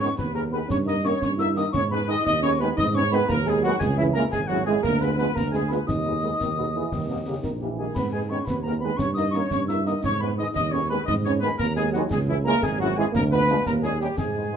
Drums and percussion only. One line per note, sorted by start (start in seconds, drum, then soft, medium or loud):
0.19 concert bass drum medium
0.19 snare medium
0.70 concert bass drum medium
0.70 snare medium
0.88 snare soft
1.05 snare medium
1.22 concert bass drum medium
1.22 snare medium
1.39 snare medium
1.57 snare medium
1.74 concert bass drum medium
1.74 snare medium
2.26 concert bass drum medium
2.26 snare medium
2.78 concert bass drum medium
2.78 snare medium
2.95 snare soft
3.12 snare medium
3.30 concert bass drum medium
3.30 snare medium
3.47 snare medium
3.64 snare soft
3.81 concert bass drum medium
3.81 snare medium
3.81 crash soft
4.33 concert bass drum medium
4.33 snare medium
4.84 concert bass drum medium
4.84 snare medium
5.01 snare medium
5.19 snare soft
5.37 concert bass drum medium
5.37 snare medium
5.54 snare medium
5.71 snare soft
5.89 concert bass drum medium
5.89 snare medium
6.41 concert bass drum medium
6.41 snare medium
6.92 concert bass drum medium
6.92 snare medium
7.44 concert bass drum medium
7.44 snare medium
7.96 concert bass drum medium
7.96 snare medium
7.96 crash soft
8.47 concert bass drum medium
8.47 snare medium
8.99 concert bass drum medium
8.99 snare medium
9.17 snare soft
9.34 snare medium
9.51 concert bass drum medium
9.51 snare medium
9.69 snare soft
9.87 snare soft
10.04 concert bass drum medium
10.04 snare medium
10.56 concert bass drum medium
10.56 snare medium
11.08 concert bass drum medium
11.08 snare medium
11.25 snare soft
11.42 snare soft
11.59 concert bass drum medium
11.59 snare medium
11.77 snare medium
11.94 snare soft
12.11 concert bass drum medium
12.11 snare medium
12.11 crash soft
12.63 concert bass drum medium
12.63 snare medium
13.15 concert bass drum medium
13.15 snare medium
13.32 snare soft
13.49 snare medium
13.66 concert bass drum medium
13.66 snare medium
13.84 snare medium
14.01 snare soft
14.18 concert bass drum medium
14.18 snare medium